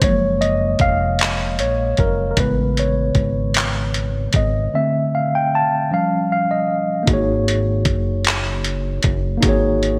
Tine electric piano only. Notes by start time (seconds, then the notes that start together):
0.03 F3 G#3 A#3 C#5
0.41 D#5
0.81 F5
1.60 C#5
2.00 A#4
2.31 A#4
2.38 C#3 G#3 B3 B4
2.79 C#5
4.36 D#5
4.74 D3 A3 C4 E5
5.15 F5
5.35 G5
5.55 A5
5.91 F3 G3 C#4 F5
6.32 F5
6.51 D#5
7.03 A#3 D#4
7.08 F#4 G#4
7.13 C#5
9.37 A#3 D#4
9.43 F#4 G#4
9.49 C#5